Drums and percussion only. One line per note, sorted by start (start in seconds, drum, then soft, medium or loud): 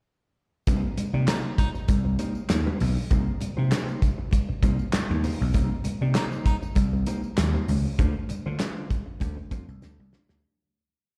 0.67 kick loud
0.67 closed hi-hat loud
0.67 tambourine medium
0.67 muted conga soft
0.67 low conga medium
0.97 closed hi-hat medium
0.97 tambourine medium
0.97 muted conga soft
0.97 high conga medium
1.28 snare loud
1.28 clap medium
1.28 closed hi-hat medium
1.28 tambourine loud
1.28 muted conga soft
1.58 kick loud
1.58 closed hi-hat medium
1.58 tambourine medium
1.58 muted conga soft
1.58 high conga medium
1.58 low conga medium
1.75 tambourine soft
1.88 kick loud
1.88 closed hi-hat loud
1.88 tambourine medium
1.88 muted conga soft
1.88 high conga medium
2.19 closed hi-hat medium
2.19 tambourine medium
2.19 muted conga soft
2.19 high conga medium
2.35 tambourine soft
2.50 snare loud
2.50 clap medium
2.50 closed hi-hat loud
2.50 tambourine medium
2.50 high conga medium
2.67 high conga medium
2.80 open hi-hat medium
2.80 tambourine medium
2.80 muted conga soft
2.80 low conga medium
2.96 tambourine soft
3.10 kick loud
3.10 closed hi-hat loud
3.10 tambourine medium
3.10 muted conga soft
3.10 low conga medium
3.41 closed hi-hat medium
3.41 tambourine medium
3.41 high conga medium
3.72 snare loud
3.72 clap medium
3.72 closed hi-hat medium
3.72 tambourine medium
3.72 muted conga soft
3.88 tambourine soft
4.02 kick loud
4.02 closed hi-hat medium
4.02 tambourine medium
4.02 muted conga soft
4.02 high conga medium
4.02 low conga medium
4.31 kick loud
4.31 closed hi-hat loud
4.31 tambourine medium
4.31 high conga medium
4.63 kick medium
4.63 closed hi-hat medium
4.63 tambourine medium
4.63 muted conga soft
4.63 high conga medium
4.79 tambourine soft
4.93 snare loud
4.93 clap loud
4.93 closed hi-hat medium
4.93 tambourine medium
4.93 muted conga soft
4.93 high conga medium
5.11 high conga medium
5.24 open hi-hat medium
5.24 tambourine medium
5.24 muted conga soft
5.24 low conga medium
5.54 kick loud
5.54 closed hi-hat loud
5.54 tambourine medium
5.54 muted conga soft
5.54 low conga medium
5.84 closed hi-hat medium
5.84 tambourine medium
5.84 muted conga soft
5.84 high conga medium
6.15 snare loud
6.15 clap medium
6.15 closed hi-hat medium
6.15 tambourine loud
6.15 muted conga soft
6.32 tambourine soft
6.46 kick medium
6.46 closed hi-hat medium
6.46 tambourine medium
6.46 muted conga soft
6.46 high conga medium
6.46 low conga medium
6.63 tambourine soft
6.75 kick loud
6.75 closed hi-hat medium
6.75 tambourine medium
6.75 muted conga soft
6.75 high conga medium
7.06 closed hi-hat medium
7.06 tambourine medium
7.06 high conga medium
7.24 tambourine soft
7.37 snare loud
7.37 clap medium
7.37 closed hi-hat loud
7.37 tambourine medium
7.37 muted conga soft
7.37 high conga medium
7.55 high conga medium
7.68 open hi-hat medium
7.68 tambourine medium
7.68 muted conga soft
7.68 low conga medium
7.98 kick loud
7.98 closed hi-hat loud
7.98 tambourine medium
7.98 low conga medium
8.29 closed hi-hat medium
8.29 tambourine medium
8.29 muted conga soft
8.29 high conga medium
8.59 snare loud
8.59 clap medium
8.59 closed hi-hat loud
8.59 tambourine medium
8.59 muted conga soft
8.90 kick loud
8.90 closed hi-hat medium
8.90 tambourine medium
8.90 muted conga soft
8.90 high conga medium
8.90 low conga medium
9.20 kick loud
9.20 closed hi-hat medium
9.20 tambourine medium
9.20 high conga medium
9.51 kick loud
9.51 closed hi-hat medium
9.51 tambourine medium
9.51 muted conga soft
9.51 high conga medium
9.68 tambourine soft
9.82 snare medium
9.82 tambourine medium
9.82 high conga medium
10.00 high conga medium
10.13 snare medium
10.13 tambourine medium
10.13 muted conga soft
10.13 low conga medium
10.29 snare medium
10.29 tambourine soft